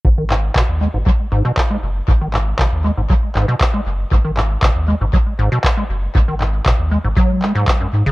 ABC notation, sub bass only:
X:1
M:4/4
L:1/16
Q:1/4=118
K:G#m
V:1 name="Sub bass" clef=bass
G,,,4 G,,, D,, z G,,, z2 G,,, z3 F,,, z | G,,,4 G,,, D,, z G,,, z2 G,,, z3 F,,, z | G,,,4 G,,, D,, z G,,, z2 G,,, z3 F,,, z | G,,,4 G,,, D,, z G,,, z6 G,, F,,, |]